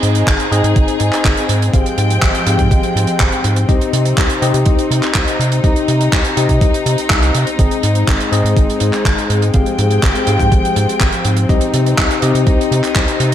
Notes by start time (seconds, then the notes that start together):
Already playing: C4 D#4 G#4 D#5
0.03 G#2, closed hi-hat
0.15 closed hi-hat
0.27 G#1, kick, clap, closed hi-hat
0.40 closed hi-hat
0.52 G#2 C4 D#4 G#4 D#5, closed hi-hat
0.64 G#2, closed hi-hat
0.76 G#1, kick, closed hi-hat
0.88 closed hi-hat
1.00 G#2, closed hi-hat
1.13 clap, closed hi-hat
1.25 G#1, kick, clap, closed hi-hat
1.37 closed hi-hat
1.49 G#2, closed hi-hat
1.62 closed hi-hat
1.73 G#1 F3 G#3 C4 G4 G#4 F5 G5, kick, closed hi-hat
1.86 closed hi-hat
1.98 G#2, closed hi-hat
2.10 closed hi-hat
2.22 G#1, kick, clap, closed hi-hat
2.35 closed hi-hat
2.47 G#2 C4 G4 G#4 F5, closed hi-hat
2.59 G#2, kick, closed hi-hat
2.71 G#1, kick, closed hi-hat
2.83 closed hi-hat
2.96 G#2, closed hi-hat
3.07 closed hi-hat
3.20 G#1, kick, clap, closed hi-hat
3.32 closed hi-hat
3.44 G#2, closed hi-hat
3.56 closed hi-hat
3.69 C2 C4 D#4 G4 D#5, kick, closed hi-hat
3.81 closed hi-hat
3.93 C3, closed hi-hat
4.05 closed hi-hat
4.17 C2, kick, clap, closed hi-hat
4.30 closed hi-hat
4.42 C3 C4 D#4 G4 D#5, closed hi-hat
4.54 C3, closed hi-hat
4.66 C2, kick, closed hi-hat
4.79 closed hi-hat
4.91 C3, closed hi-hat
5.03 clap, closed hi-hat
5.15 C2, kick, clap, closed hi-hat
5.28 closed hi-hat
5.39 C3, closed hi-hat
5.52 closed hi-hat
5.64 C2 C4 D#4 G4 D#5, kick, closed hi-hat
5.76 closed hi-hat
5.88 C3, closed hi-hat
6.01 closed hi-hat
6.13 C2, kick, clap, closed hi-hat
6.25 closed hi-hat
6.37 C3 C4 D#4 G4 D#5, closed hi-hat
6.49 C3, kick, closed hi-hat
6.61 C2, kick, closed hi-hat
6.74 closed hi-hat
6.86 C3, closed hi-hat
6.98 closed hi-hat
7.10 C2, kick, clap, closed hi-hat
7.22 closed hi-hat
7.35 C3, closed hi-hat
7.47 closed hi-hat
7.59 G#1 G#3 C4 D#4 G#4 D#5, kick, closed hi-hat
7.71 closed hi-hat
7.83 G#2, closed hi-hat
7.95 closed hi-hat
8.08 G#1, kick, clap, closed hi-hat
8.20 closed hi-hat
8.32 G#2 C4 D#4 G#4 D#5, closed hi-hat
8.44 G#2, closed hi-hat
8.57 G#1, kick, closed hi-hat
8.70 closed hi-hat
8.80 G#2, closed hi-hat
8.93 clap, closed hi-hat
9.05 G#1, kick, clap, closed hi-hat
9.18 closed hi-hat
9.30 G#2, closed hi-hat
9.42 closed hi-hat
9.54 G#1 F3 C4 G4 G#4 F5 G5, kick, closed hi-hat
9.66 closed hi-hat
9.79 G#2, closed hi-hat
9.91 closed hi-hat
10.03 G#1, kick, clap, closed hi-hat
10.15 closed hi-hat
10.27 G#2 C4 G4 G#4 F5, closed hi-hat
10.40 G#2, kick, closed hi-hat
10.52 G#1, kick, closed hi-hat
10.65 closed hi-hat
10.76 G#2, closed hi-hat
10.89 closed hi-hat
11.00 G#1, kick, clap, closed hi-hat
11.12 closed hi-hat
11.25 G#2, closed hi-hat
11.37 closed hi-hat
11.49 C2 C4 D#4 G4 D#5, kick, closed hi-hat
11.61 closed hi-hat
11.74 C3, closed hi-hat
11.86 closed hi-hat
11.98 C2, kick, clap, closed hi-hat
12.11 closed hi-hat
12.22 C3 C4 D#4 G4 D#5, closed hi-hat
12.35 C3, closed hi-hat
12.47 C2, kick, closed hi-hat
12.61 closed hi-hat
12.71 C3, closed hi-hat
12.84 clap, closed hi-hat
12.96 C2, kick, clap, closed hi-hat
13.08 closed hi-hat
13.20 C3, closed hi-hat